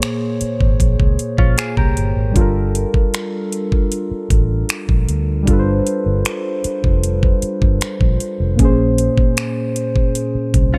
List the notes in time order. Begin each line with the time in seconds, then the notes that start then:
Already playing: A#2 A#3 G#4 C5 C#5
0.02 finger snap, closed hi-hat
0.41 muted fingered electric bass stroke, closed hi-hat
0.61 G#1, kick
0.80 A#1, kick, closed hi-hat
1.00 C#2, kick
1.19 closed hi-hat
1.38 A#1 C#4 F4, kick
1.58 F4 G#4, finger snap, closed hi-hat
1.77 C2 G4 A#4, kick
1.97 G1, closed hi-hat
2.17 G#1
2.31 G3 D4
2.36 G1 F4 A4, kick, closed hi-hat
2.41 A#4
2.75 closed hi-hat
2.94 kick
3.14 finger snap, closed hi-hat
3.52 closed hi-hat
3.72 kick
3.92 closed hi-hat
4.11 muted fingered electric bass stroke
4.30 A1, kick, closed hi-hat
4.69 finger snap, closed hi-hat
4.89 A#1, kick
5.09 D2, closed hi-hat
5.43 G3 D4
5.47 G1 F4 A4, kick, closed hi-hat
5.53 B4
5.59 C5
5.87 closed hi-hat
6.06 G1
6.25 finger snap, closed hi-hat
6.64 muted fingered electric bass stroke, closed hi-hat
6.84 F1, kick
7.04 closed hi-hat
7.23 kick
7.42 muted fingered electric bass stroke, closed hi-hat
7.62 G1, kick
7.81 finger snap, muted fingered electric bass stroke, closed hi-hat
8.01 A#1, kick
8.20 closed hi-hat
8.40 F1
8.54 A#2 A#3
8.59 A#1 C#4 G#4, kick, closed hi-hat
8.64 C5
8.98 closed hi-hat
9.18 kick
9.37 finger snap, closed hi-hat
9.76 closed hi-hat
9.96 kick
10.15 closed hi-hat
10.35 muted fingered electric bass stroke
10.54 C2, kick, closed hi-hat
10.74 C#4 F4